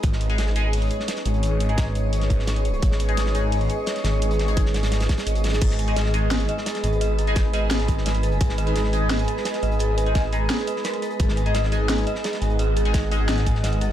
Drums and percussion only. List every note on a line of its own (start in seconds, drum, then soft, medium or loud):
0.03 kick loud
0.03 closed hi-hat loud
0.03 closed hi-hat medium
0.12 snare soft
0.21 closed hi-hat medium
0.30 closed hi-hat soft
0.38 snare loud
0.38 closed hi-hat medium
0.47 snare medium
0.56 closed hi-hat medium
0.73 closed hi-hat medium
0.73 open hi-hat medium
0.82 closed hi-hat soft
0.91 closed hi-hat medium
1.00 snare soft
1.08 snare loud
1.08 closed hi-hat medium
1.17 snare medium
1.17 closed hi-hat soft
1.25 closed hi-hat medium
1.34 closed hi-hat soft
1.43 closed hi-hat medium
1.60 closed hi-hat medium
1.69 closed hi-hat soft
1.78 kick medium
1.78 snare loud
1.78 closed hi-hat medium
1.95 closed hi-hat medium
2.13 closed hi-hat medium
2.21 snare soft
2.21 closed hi-hat soft
2.30 kick medium
2.30 closed hi-hat medium
2.39 snare soft
2.47 snare loud
2.47 closed hi-hat medium
2.56 closed hi-hat soft
2.65 closed hi-hat medium
2.74 closed hi-hat soft
2.82 kick loud
2.82 closed hi-hat medium
2.92 snare medium
3.00 closed hi-hat medium
3.09 closed hi-hat soft
3.17 snare loud
3.17 closed hi-hat medium
3.26 snare medium
3.35 closed hi-hat medium
3.52 closed hi-hat medium
3.52 open hi-hat medium
3.61 closed hi-hat soft
3.69 closed hi-hat medium
3.86 snare loud
3.86 closed hi-hat medium
3.96 snare soft
3.96 closed hi-hat soft
4.04 snare loud
4.04 closed hi-hat medium
4.22 closed hi-hat medium
4.31 closed hi-hat medium
4.39 snare medium
4.39 closed hi-hat medium
4.48 closed hi-hat medium
4.48 closed hi-hat soft
4.57 kick loud
4.57 closed hi-hat medium
4.66 snare medium
4.74 snare medium
4.74 closed hi-hat medium
4.83 snare medium
4.83 closed hi-hat soft
4.83 closed hi-hat medium
4.92 snare loud
4.92 closed hi-hat medium
5.00 snare loud
5.00 closed hi-hat medium
5.00 closed hi-hat soft
5.09 kick medium
5.09 snare medium
5.09 closed hi-hat medium
5.18 snare loud
5.18 closed hi-hat medium
5.27 closed hi-hat medium
5.35 closed hi-hat soft
5.35 closed hi-hat medium
5.44 snare medium
5.44 closed hi-hat medium
5.48 snare medium
5.48 closed hi-hat medium
5.53 snare loud
5.53 closed hi-hat medium
5.61 kick loud
5.61 closed hi-hat medium
5.61 closed hi-hat loud
5.61 crash medium
5.71 snare medium
5.79 closed hi-hat medium
5.88 closed hi-hat soft
5.96 snare loud
5.96 closed hi-hat medium
6.05 snare medium
6.14 closed hi-hat medium
6.31 snare loud
6.31 closed hi-hat loud
6.31 open hi-hat medium
6.40 closed hi-hat soft
6.48 closed hi-hat medium
6.57 snare soft
6.66 snare loud
6.66 closed hi-hat loud
6.66 closed hi-hat medium
6.75 snare medium
6.75 closed hi-hat soft
6.84 closed hi-hat medium
6.93 closed hi-hat soft
7.01 closed hi-hat medium
7.18 closed hi-hat medium
7.27 closed hi-hat soft
7.36 kick loud
7.36 snare loud
7.36 closed hi-hat loud
7.36 closed hi-hat medium
7.53 closed hi-hat medium
7.71 snare loud
7.71 closed hi-hat loud
7.71 closed hi-hat medium
7.80 snare soft
7.80 closed hi-hat soft
7.88 kick medium
7.88 closed hi-hat medium
7.98 snare soft
8.06 snare loud
8.06 closed hi-hat loud
8.06 closed hi-hat medium
8.15 closed hi-hat soft
8.23 closed hi-hat medium
8.32 closed hi-hat soft
8.41 kick loud
8.41 closed hi-hat medium
8.49 snare medium
8.58 closed hi-hat medium
8.67 closed hi-hat soft
8.76 snare loud
8.76 closed hi-hat medium
8.84 snare soft
8.93 closed hi-hat medium
9.10 snare loud
9.10 closed hi-hat medium
9.10 open hi-hat medium
9.19 closed hi-hat soft
9.28 closed hi-hat medium
9.37 snare soft
9.45 snare loud
9.45 closed hi-hat medium
9.54 snare soft
9.54 closed hi-hat soft
9.62 closed hi-hat medium
9.72 closed hi-hat soft
9.79 closed hi-hat medium
9.98 closed hi-hat medium
10.06 closed hi-hat soft
10.15 kick loud
10.15 snare loud
10.15 closed hi-hat medium
10.15 closed hi-hat loud
10.33 closed hi-hat medium
10.50 snare loud
10.50 closed hi-hat medium
10.59 snare soft
10.59 closed hi-hat soft
10.67 closed hi-hat medium
10.76 snare soft
10.84 snare loud
10.84 closed hi-hat medium
10.94 closed hi-hat soft
11.02 closed hi-hat medium
11.11 closed hi-hat soft
11.19 kick loud
11.19 closed hi-hat medium
11.29 snare medium
11.37 closed hi-hat medium
11.46 closed hi-hat soft
11.54 snare loud
11.54 closed hi-hat medium
11.64 snare medium
11.72 closed hi-hat medium
11.89 snare loud
11.89 closed hi-hat medium
11.89 open hi-hat medium
11.98 closed hi-hat soft
12.07 closed hi-hat medium
12.15 snare medium
12.24 snare loud
12.24 closed hi-hat medium
12.33 snare medium
12.33 closed hi-hat soft
12.42 closed hi-hat medium
12.50 closed hi-hat soft
12.59 closed hi-hat medium
12.77 closed hi-hat medium
12.85 closed hi-hat soft
12.94 kick medium
12.94 snare loud
12.94 closed hi-hat medium
13.12 closed hi-hat medium
13.29 snare loud
13.29 closed hi-hat medium
13.38 snare soft
13.38 closed hi-hat soft
13.46 kick medium
13.46 closed hi-hat medium
13.55 snare soft
13.64 snare loud
13.64 closed hi-hat medium
13.73 closed hi-hat soft
13.81 closed hi-hat medium